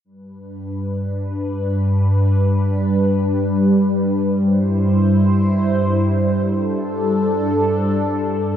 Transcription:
0.05 G2 G3 D4 B4
4.33 G2 E4 C5
6.48 D4 A4

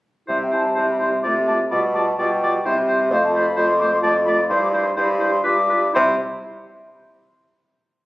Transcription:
0.28 C3 G3 E4 C5 E5
0.43 G5
0.51 G3 E4 C5 A5
0.75 C3 G3 E4 C5
0.90 B5
0.99 G3 E4 C5 C6
1.22 C3 A3 F4 D5 D6
1.47 A3 F4 D5 A5
1.69 B2 G3 F4 D5 B5
1.94 G3 F4 D5 A5
2.18 B2 G3 F4 D5 G5
2.43 G3 F4 D5
2.66 C3 G3 E4 C5
2.88 G3 E4 C5
3.11 F2 A3 F4 C5 F5
3.23 A5
3.34 A3 F4 C5 B5
3.57 F2 A3 F4 C5
3.67 C6
3.79 A3 F4 C5 D6
3.91 C6
4.02 F2 A3 F4 D5 A5
4.25 A3 F4 D5 B5
4.48 G2 G3 E4 C5 C6
4.61 D6
4.72 G3 E4 C5
4.84 C6
4.95 G2 G3 E4 C5 B5
5.20 G3 E4 C5
5.32 C6
5.43 G2 G3 F4 B4 D6
5.69 G3 F4 B4
5.94 C3 G3 E4 C5 C6

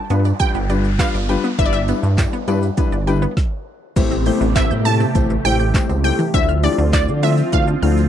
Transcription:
Already playing: A5, noise sweep
0.10 G2 G3 B3 D4 F4 B4, closed hi-hat, tambourine, shaker
0.25 D5, tambourine, shaker
0.39 G3 D4 F4 B4 G5, kick, closed hi-hat, tambourine, shaker
0.55 G1 B3, shaker
0.69 G3 D4 F4 B4 D5, closed hi-hat, tambourine, shaker
0.85 shaker
0.99 G3 B3 D4 F4 B4 F5, kick, snare, clap, closed hi-hat, tambourine, shaker
1.14 G1 D5, shaker
1.29 G3 D4 F4 B4 G5, closed hi-hat, tambourine, shaker
1.44 B3, shaker
1.58 G1 G3 D4 E4 B4 D5 E5, kick, closed hi-hat, tambourine, shaker
1.66 D5
1.73 E5 G5, shaker
1.88 G3 B3 D4 E4 B4, closed hi-hat, tambourine, shaker
2.03 G2, shaker
2.18 G3 D4 E4 D5 G5, kick, snare, clap, closed hi-hat, tambourine, shaker
2.33 B3, shaker
2.48 G2 G3 D4 E4 B4 D5, closed hi-hat, tambourine, shaker
2.62 tambourine, shaker
2.77 G3 B3 D4 E4 B4, kick, closed hi-hat, tambourine, shaker
2.92 G1 D5, shaker
3.07 G3 D4 E4 B4 G5, closed hi-hat, tambourine, shaker
3.22 B3, shaker
3.37 kick, snare
3.96 A1 C3 E3 A3 C4 E4 G4 C5, kick, closed hi-hat, crash, tambourine, downlifter, shaker
4.11 C4, shaker
4.26 A3 C4 E4 G4 C5 G6, open hi-hat, tambourine, shaker
4.41 A1 E3, shaker
4.56 A3 C4 E4 G4 C5 E5, kick, snare, clap, closed hi-hat, tambourine, shaker
4.71 A2 G6, shaker
4.85 A3 C4 E4 G4 A4 A5, open hi-hat, tambourine, shaker
5.00 C4, tambourine, shaker
5.15 A1 A3 C4 E4 G4 C5 G6, kick, closed hi-hat, tambourine, shaker
5.30 E3, shaker
5.45 A1 A3 C4 E4 G4 C5 G5, open hi-hat, tambourine, shaker
5.60 G6, shaker
5.74 E3 A3 C4 E4 G4 C5, kick, snare, clap, closed hi-hat, tambourine, shaker
5.89 C#2 C4, tambourine, shaker
6.04 A3 C4 E4 G4 C5 G5 G6, open hi-hat, tambourine, shaker
6.19 E3, tambourine, shaker
6.34 D2 F3 A3 C4 D4 E4 F4 C5 E5, kick, closed hi-hat, tambourine, shaker
6.49 F6, shaker
6.63 E3 A3 D4 E4 F4 G4 D5, open hi-hat, tambourine, shaker
6.78 D2 D4, shaker
6.93 A3 D4 E4 F4 C5 D5 F6, kick, snare, clap, closed hi-hat, tambourine, shaker
7.08 D3, shaker
7.23 A3 D4 E4 F4 C5 E5, open hi-hat, tambourine, shaker
7.38 tambourine, shaker
7.52 D2 E3 A3 D4 E4 F4 C5 F5, kick, closed hi-hat, tambourine, shaker
7.67 D4, shaker
7.82 D2 A3 D4 E4 F4 C5 F6, open hi-hat, tambourine, shaker
7.97 tambourine, shaker

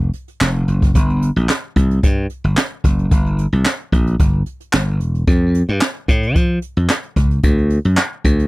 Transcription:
0.14 closed hi-hat
0.28 closed hi-hat
0.41 F1, snare, clap
0.55 closed hi-hat
0.68 F#1, closed hi-hat
0.82 kick, closed hi-hat
0.95 G1, kick, closed hi-hat
1.10 closed hi-hat
1.22 closed hi-hat
1.36 A#1, closed hi-hat
1.49 snare, clap
1.76 C2, kick, closed hi-hat
1.91 closed hi-hat
2.03 G2, kick, closed hi-hat
2.30 closed hi-hat
2.44 G1, closed hi-hat
2.57 snare, clap
2.84 F#1, kick, closed hi-hat
2.99 closed hi-hat
3.11 G1, kick, closed hi-hat
3.26 closed hi-hat
3.39 closed hi-hat
3.53 C2, closed hi-hat
3.65 snare, clap
3.80 closed hi-hat
3.92 A#1, kick, closed hi-hat
4.07 closed hi-hat
4.20 G1, kick, closed hi-hat
4.46 closed hi-hat
4.60 closed hi-hat
4.73 G1, snare, clap
4.87 closed hi-hat
5.00 E1, closed hi-hat
5.15 closed hi-hat
5.27 F2, kick, closed hi-hat
5.54 closed hi-hat
5.68 G2, closed hi-hat
5.81 snare, clap
5.96 closed hi-hat
6.08 A2, kick, closed hi-hat
6.23 closed hi-hat
6.36 F3, kick, closed hi-hat
6.62 closed hi-hat
6.77 F2, closed hi-hat
6.89 snare, clap
7.04 closed hi-hat
7.16 C#2, kick, closed hi-hat
7.31 closed hi-hat
7.43 D2, kick, closed hi-hat
7.58 closed hi-hat
7.70 closed hi-hat
7.85 F#2, closed hi-hat
7.97 snare, clap
8.24 D2, kick, closed hi-hat
8.39 closed hi-hat

